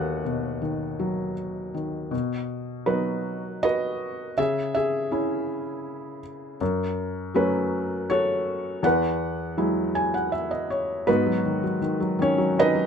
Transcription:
Already playing: D#2 D#3 F#3 A4 B4 C#5 D#5 E5 F#5
0.25 B2
0.62 D#3
0.99 F#3
1.74 D#3
2.11 B2
2.86 F#3 B3 D#4 F#4 B4
3.63 F#4 B4 D#5
4.38 C#3 G#4 E5
4.75 G#4 E5
5.12 C#4 E4
6.61 F#2
7.34 F#3 A3 C#4 F#4 B4
8.10 F#4 A4 C#5
8.83 E2 B4 F#5
9.57 F#3 G#3 E4
9.95 G#5
10.14 F#5
10.32 E5
10.51 D#5
10.70 C#5
11.07 G#2 B3 D#4 F#4 B4
11.26 F#3
11.45 D#3
11.63 F#3
11.82 D#3
12.00 F#3
12.19 D#3 C#4 C#5
12.38 F#3
12.56 D#3 D#4 B4 D#5
12.75 F#3

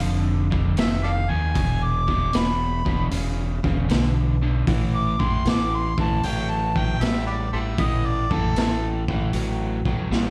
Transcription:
Already playing: F5
0.00 F1 F2 D3, open hi-hat
0.50 F2 D3, kick
0.77 F1 F2 D#3 E5, snare, open hi-hat
1.04 A4 D5 F5
1.29 D#2 F2 D#3 G#5
1.54 E1 E2 B2, kick, open hi-hat
1.84 D6
2.07 E2 B2, kick
2.33 E1 E2 B2 B5, snare, open hi-hat
2.85 E1 E2 B2, kick
3.11 E1 E2 C#3, open hi-hat
3.64 E1 E2 C#3, kick
3.89 B1 E2 D3, snare, open hi-hat
4.42 E2 D3
4.67 A1 A2 E3, kick, open hi-hat
4.95 D6
5.19 A1 A2 E3 C6, kick
5.45 A1 A2 E3, snare, open hi-hat
5.50 D6
5.76 C6
5.98 A1 A2 E3 A5, kick
6.23 A1 A2 F#3 G5, open hi-hat
6.50 A5
6.76 A2 F#3 G5, kick
7.01 A1 A2 G3 E5, snare, open hi-hat
7.27 G4 B4 D5
7.53 A1 A2 G3 A4 C5 E5
7.78 A1 A2 E3 D#5, kick, open hi-hat
8.06 D5
8.31 A2 E3 A4, kick
8.56 A1 A2 E3, snare, open hi-hat
9.08 A1 A2 E3, kick
9.33 A1 A2 F#3, open hi-hat
9.85 A1 A2 F#3, kick
10.10 A1 A2 G3, snare

